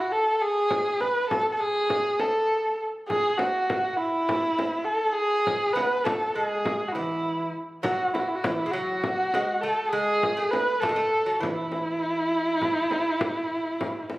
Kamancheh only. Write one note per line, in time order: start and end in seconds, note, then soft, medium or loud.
0.00 0.13 F#4 medium
0.12 0.43 A4 medium
0.42 1.02 G#4 medium
1.01 1.29 B4 medium
1.30 1.51 A4 medium
1.52 1.62 A4 medium
1.60 2.21 G#4 loud
2.20 2.79 A4 medium
3.08 3.39 G#4 medium
3.38 3.98 F#4 medium
3.97 4.86 E4 medium
4.85 5.14 A4 medium
5.13 5.74 G#4 loud
5.73 6.05 B4 medium
6.04 6.36 A4 medium
6.34 6.89 G#4 medium
6.88 6.94 F#4 medium
6.92 7.53 E4 medium
7.84 8.12 F#4 medium
8.13 8.21 E4 medium
8.19 8.30 F#4 medium
8.28 8.37 E4 medium
8.35 8.46 F#4 medium
8.44 8.73 E4 medium
8.71 9.63 F#4 medium
9.61 9.85 A4 medium
9.85 10.53 G#4 loud
9.85 9.90 A4 medium
10.51 10.81 B4 medium
10.80 11.41 A4 medium
11.40 14.19 E4 medium